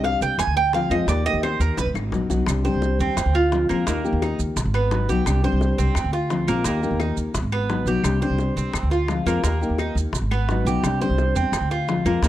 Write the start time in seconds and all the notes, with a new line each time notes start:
Already playing: C2 G3 C4 D4 G4
0.04 F5, high bongo, maracas
0.21 C2 G5, maracas
0.38 F2 G#5, muted nylon-string guitar stroke, high bongo, claves, maracas
0.47 D2
0.56 G5, high bongo, maracas
0.73 F3 G#3 C4 F4 F5, high bongo, low bongo, maracas
0.90 F2 F3 G#3 C4 F4 D#5, high bongo, claves, maracas
1.07 D#2 D#3 A#3 D#4 G4 D5, high bongo, maracas
1.26 A#3 D#4 G4 D#5, high bongo, maracas
1.33 D#2
1.43 C5, high bongo, claves, maracas
1.60 D#2 A#4, maracas
1.77 B1 B4, muted nylon-string guitar stroke, low bongo, maracas
1.86 G#1
1.94 G#1, low bongo, claves, maracas
2.12 A#1 F#3 B3 D#4 F#4, low bongo, maracas
2.30 B1 F#3 B3 D#4 F#4, low bongo, maracas
2.46 C2 C3 G3 C4 D4 G4, high bongo, claves, maracas
2.64 G3 C4 D4 G4 C5, high bongo, maracas
2.74 C2
2.82 high bongo, maracas
2.99 D#2 C4, maracas
3.17 F2, muted nylon-string guitar stroke, high bongo, claves, maracas
3.26 D2
3.35 F4, high bongo, maracas
3.52 F3 G#3 C4 F4, high bongo, low bongo, maracas
3.69 F2 F3 G#3 A#3 C4 F4, high bongo, claves, maracas
3.87 D#2 D#3 A#3 D#4 G4, high bongo, maracas
4.04 A#3 D#4 G4, high bongo, maracas
4.13 D#2
4.22 D#4, high bongo, claves, maracas
4.39 D#2, maracas
4.56 B1, muted nylon-string guitar stroke, high bongo, maracas
4.65 G#1
4.74 B3, high bongo, claves, maracas
4.91 F#3 B3 D#4 F#4, high bongo, low bongo, maracas
5.09 B1 F#3 B3 D#4 F#4 G4, high bongo, maracas
5.26 C2 C3 G3 C4 D4 G4, high bongo, claves, maracas
5.44 G3 C4 D4 G4 C5, high bongo, maracas
5.52 C2
5.61 high bongo, maracas
5.78 C2 C4, maracas
5.95 F2, muted nylon-string guitar stroke, high bongo, claves, maracas
6.04 D2
6.13 F4, high bongo, maracas
6.30 F3 G#3 C4 F4, high bongo, low bongo, maracas
6.47 A#1 F3 G#3 A#3 C4 F4, high bongo, claves, maracas
6.64 D#2 D#3 A#3 D#4 G4, high bongo, maracas
6.82 A#3 D#4 G4, high bongo, maracas
6.91 D#2
7.00 D#4, high bongo, claves, maracas
7.17 D#2, maracas
7.34 B1, muted nylon-string guitar stroke, high bongo, maracas
7.42 G#1
7.52 B3, high bongo, claves, maracas
7.70 F#3 B3 D#4 F#4, high bongo, low bongo, maracas
7.86 B1 F#3 B3 D#4 F#4 G4, high bongo, maracas
8.04 C2 C3 G3 C4 D4 G4, high bongo, claves, maracas
8.21 G3 C4 D4 G4 C5, high bongo, maracas
8.29 C2
8.39 high bongo, maracas
8.56 C2 C4, maracas
8.73 F2, muted nylon-string guitar stroke, high bongo, claves, maracas
8.83 D2
8.90 F4, high bongo, maracas
9.08 F3 G#3 C4 F4, high bongo, low bongo, maracas
9.26 F2 F3 G#3 A#3 C4 F4, high bongo, claves, maracas
9.43 D#2 D#3 A#3 D#4 G4, high bongo, maracas
9.61 A#3 D#4 G4, high bongo, maracas
9.69 D#2
9.78 D#4, high bongo, claves, maracas
9.95 D#2, maracas
10.13 B1, muted nylon-string guitar stroke, high bongo, maracas
10.22 G#1
10.31 B3, high bongo, claves, maracas
10.49 F#3 B3 D#4 F#4, high bongo, low bongo, maracas
10.65 B1 B3 D#4 F#4 G4, high bongo, maracas
10.69 F#3
10.83 C2 C3 G3 C4 D4 G4, high bongo, claves, maracas
11.01 G3 C4 D4 G4 C5, high bongo, maracas
11.09 C2
11.18 high bongo, maracas
11.35 E2 C4, maracas
11.52 F2, muted nylon-string guitar stroke, high bongo, claves, maracas
11.61 D2
11.71 F4, high bongo, maracas
11.88 F3 G#3 C4 F4, high bongo, low bongo, maracas
12.05 F2 F3 G#3 A#3 C4 F4, high bongo, claves, maracas
12.22 D#2 D#3 A#3 D#4 G4, high bongo, maracas